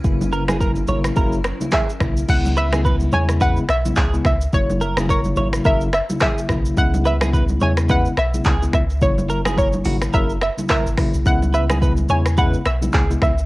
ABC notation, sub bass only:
X:1
M:4/4
L:1/16
Q:"Swing 16ths" 1/4=107
K:C#dor
V:1 name="Sub bass" clef=bass
F,,,6 G,,,2 F,,,3 z3 B,,,2 | C,,6 E,,4 B,,,2 C,,2 C,,2 | F,,,6 G,,,2 F,,,3 z3 B,,,2 | C,,6 E,,4 B,,,2 C,,2 C,,2 |
F,,,6 G,,,2 F,,,3 z2 G,,, z B,,, | C,,6 E,,4 B,,,2 C,,2 C,,2 |]